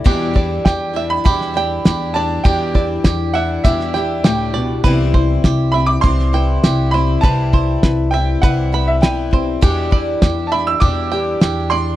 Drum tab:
CC |x---------------|----------------|----------------|----------------|
HH |----x---x---x---|x---x---x---x---|x---x---x---x---|x---x---x---x---|
SD |----o----oo-o---|----o----oo-o---|----o----o--o---|----o-------o---|
BD |o-o-o---o-------|o-o-o---o-------|o-o-o---o-------|o-o-o---o-----o-|

CC |----------------|
HH |x---x---x---x---|
SD |----o-------o---|
BD |o-o-o---o-------|